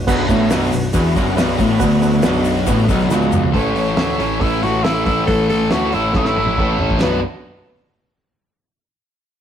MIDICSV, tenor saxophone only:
0, 0, Header, 1, 2, 480
1, 0, Start_track
1, 0, Key_signature, 2, "minor"
1, 0, Tempo, 433839
1, 87, Time_signature, 4, 2, 24, 8
1, 10407, End_track
2, 0, Start_track
2, 0, Title_t, "Tenor saxophone"
2, 0, Program_c, 0, 66
2, 3902, Note_on_c, 0, 61, 83
2, 4883, Note_on_c, 0, 64, 88
2, 4900, Note_off_c, 0, 61, 0
2, 5128, Note_on_c, 0, 66, 90
2, 5145, Note_off_c, 0, 64, 0
2, 5354, Note_on_c, 0, 64, 100
2, 5370, Note_off_c, 0, 66, 0
2, 5587, Note_off_c, 0, 64, 0
2, 5594, Note_on_c, 0, 64, 89
2, 5821, Note_off_c, 0, 64, 0
2, 5828, Note_on_c, 0, 69, 97
2, 6058, Note_off_c, 0, 69, 0
2, 6074, Note_on_c, 0, 69, 94
2, 6324, Note_on_c, 0, 66, 86
2, 6340, Note_off_c, 0, 69, 0
2, 6577, Note_on_c, 0, 64, 96
2, 6594, Note_off_c, 0, 66, 0
2, 6807, Note_off_c, 0, 64, 0
2, 6813, Note_on_c, 0, 64, 87
2, 7484, Note_off_c, 0, 64, 0
2, 7766, Note_on_c, 0, 59, 88
2, 7988, Note_off_c, 0, 59, 0
2, 10407, End_track
0, 0, End_of_file